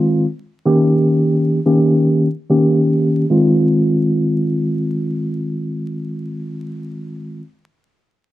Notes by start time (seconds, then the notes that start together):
Already playing: D#3 G#3 C4 F4
0.66 D#3 A#3 C#4 G4
1.66 D#3 A#3 C#4 G4
2.50 D#3 A#3 C#4 G4
3.30 D#3 G#3 C4 F4